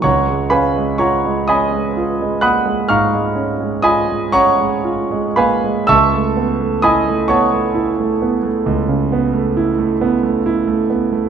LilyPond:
<<
  \new Staff \with { instrumentName = "Grand piano" } { \time 12/8 \key des \mixolydian \tempo 4. = 43 <des'' ges'' bes'' des'''>8 <ces'' f'' aes'' ces'''>8 <des'' ges'' bes'' des'''>8 <ees'' aes'' ces''' ees'''>4 <ges'' ces''' ees''' ges'''>8 <f'' bes'' des''' f'''>4 <ees'' aes'' ces''' ees'''>8 <des'' ges'' bes'' des'''>4 <ces'' f'' aes'' ces'''>8 | <e'' a'' cis''' e'''>4 <ees'' aes'' b'' ees'''>8 <cis'' ges'' a'' cis'''>1 r8 | }
  \new Staff \with { instrumentName = "Grand piano" } { \time 12/8 \key des \mixolydian des,16 aes16 des'16 aes16 f'16 aes16 des'16 aes16 f'16 aes16 bes16 aes16 aes,16 aes16 des'16 aes16 f'16 aes16 des'16 aes16 f'16 aes16 bes16 aes16 | cis,16 a16 b16 a16 e'16 a16 b16 a16 e'16 a16 b16 a16 cis,16 cis16 b16 a16 e'16 a16 b16 a16 e'16 a16 b16 a16 | }
>>